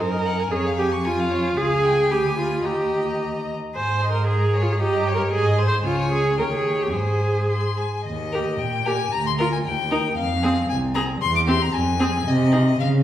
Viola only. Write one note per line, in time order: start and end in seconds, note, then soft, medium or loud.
0.00 0.53 A#4 medium
0.52 0.78 G#4 medium
0.78 0.86 G4 medium
1.04 1.59 F4 medium
1.57 2.13 G#4 medium
2.11 2.38 G4 medium
2.38 2.66 F4 medium
2.65 3.20 G4 medium
3.75 4.08 C5 medium
4.11 4.26 A#4 medium
4.27 4.64 G#4 medium
4.62 4.74 F4 medium
4.72 4.81 G#4 medium
4.80 5.14 G4 medium
5.15 5.22 A#4 medium
5.32 5.66 G#4 medium
5.68 5.75 C5 medium
5.85 6.11 F4 medium
6.12 6.38 G#4 medium
6.39 6.44 A#4 medium
6.53 6.84 G#4 medium
6.82 6.94 G4 soft
6.94 7.78 G#4 medium
8.34 8.46 G4 soft
8.87 8.99 G4 soft
9.40 9.51 F4 medium
9.91 10.03 D#4 soft
10.44 10.56 C4 medium
10.95 11.07 C4 medium
11.47 11.59 C4 medium
12.00 12.12 C4 medium
12.53 12.61 D#4 medium